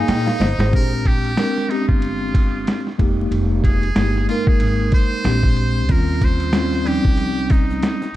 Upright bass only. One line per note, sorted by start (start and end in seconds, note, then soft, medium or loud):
0.08 0.26 A#2 loud
0.40 0.57 G1 medium
0.58 0.72 G#1 medium
0.73 1.34 A#1 medium
1.88 2.63 G1 medium
2.99 3.29 F1 medium
3.31 3.92 F1 medium
3.96 4.25 G1 medium
4.60 4.90 G#1 medium
5.25 5.89 A#1 medium
5.89 7.01 D#2 loud
7.05 7.79 C2 medium